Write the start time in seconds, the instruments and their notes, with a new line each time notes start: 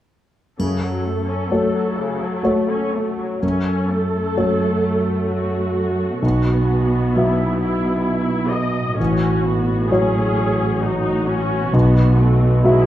0.58 cello section F#2, grand piano F#2, viola section C#3 A4, triangle
0.83 viola section F#3
1.06 viola section A3
1.29 viola section C#4
1.51 viola section A3, grand piano A3 F#4 C#5
1.75 viola section F#3
1.98 viola section C#3
2.22 viola section F#3
2.43 grand piano A3 F#4 C#5, viola section A3
2.70 viola section C#4
2.94 viola section A3
3.20 viola section F#3
3.42 cello section F#2, grand piano F#2, viola section C#4 A4
3.90 viola section A3
4.37 grand piano A3 F#4 C#5
5.31 viola section F#4
6.21 grand piano B1, cello section B2, viola section B3 F#4
7.14 grand piano F#3 F#4 E5, viola section E4
7.60 viola section E4
8.06 viola section E4
8.52 viola section D#5
8.98 grand piano A1, cello section A2, viola section C#4 F#4
9.44 viola section B3
9.89 grand piano F#3 F#4 C#5, viola section C#4 G#4
10.81 viola section D#4 F#4
11.27 viola section C#4
11.72 grand piano B1, cello section B2, viola section B3
12.19 viola section A3
12.64 grand piano F#3 F#4 E5, viola section G#3 E4